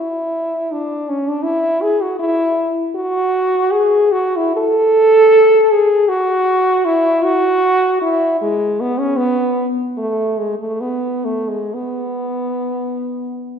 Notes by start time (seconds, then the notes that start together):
Already playing: E4
0.72 D4
1.09 C#4
1.28 D4
1.43 E4
1.82 G#4
2.01 F#4
2.19 E4
2.95 F#4
3.71 G#4
4.12 F#4
4.36 E4
4.56 A4
5.71 G#4
6.09 F#4
6.85 E4
7.23 F#4
8.01 E4
8.41 G#3
8.80 B3
8.98 C#4
9.17 B3
9.97 A3
10.38 G#3
10.59 A3
10.80 B3
11.25 A3
11.48 G#3
11.74 B3